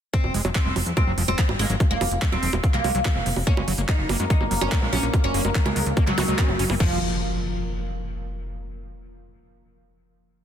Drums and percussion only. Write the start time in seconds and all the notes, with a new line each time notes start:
0.14 kick, closed hi-hat
0.24 high bongo
0.34 open hi-hat
0.45 closed hi-hat, high bongo
0.55 kick, clap, closed hi-hat
0.76 open hi-hat, high bongo
0.86 closed hi-hat
0.97 kick, closed hi-hat, high bongo
1.18 open hi-hat
1.28 closed hi-hat, high bongo
1.39 kick, clap, closed hi-hat
1.49 high bongo
1.59 open hi-hat
1.70 closed hi-hat
1.80 kick, closed hi-hat, high bongo
2.01 open hi-hat, high bongo
2.11 closed hi-hat
2.22 kick, clap, closed hi-hat
2.32 high bongo
2.43 open hi-hat
2.53 closed hi-hat, high bongo
2.64 kick, closed hi-hat
2.74 clap
2.84 open hi-hat, high bongo
2.95 closed hi-hat
3.05 kick, clap, closed hi-hat, high bongo
3.26 open hi-hat
3.36 open hi-hat, high bongo
3.47 kick, closed hi-hat
3.57 high bongo
3.68 open hi-hat
3.78 closed hi-hat
3.89 kick, clap, closed hi-hat, high bongo
4.09 open hi-hat, high bongo
4.20 closed hi-hat
4.30 kick, closed hi-hat
4.41 high bongo
4.51 open hi-hat
4.61 high bongo
4.72 kick, clap, closed hi-hat
4.93 open hi-hat, high bongo
5.03 closed hi-hat
5.14 kick, closed hi-hat, high bongo
5.34 open hi-hat
5.45 closed hi-hat, high bongo
5.55 kick, clap, closed hi-hat
5.66 high bongo
5.76 open hi-hat
5.86 closed hi-hat
5.97 kick, closed hi-hat, high bongo
6.07 clap
6.18 open hi-hat, high bongo
6.28 closed hi-hat
6.39 kick, clap, closed hi-hat
6.49 high bongo
6.59 open hi-hat
6.70 open hi-hat, high bongo
6.80 kick, crash